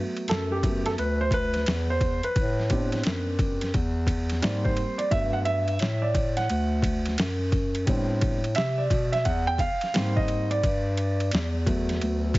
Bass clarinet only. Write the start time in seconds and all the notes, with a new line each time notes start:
0.29 F#2
0.98 D2
1.67 E2
2.24 E2
2.36 A2
3.05 F#2
3.74 E2
4.43 G#2
5.12 G2
5.80 A2
6.50 D2
7.18 F#2
7.87 A2
8.57 C3
8.90 B2
9.26 E2
9.94 G#2
10.63 G2
11.32 E2
12.01 D2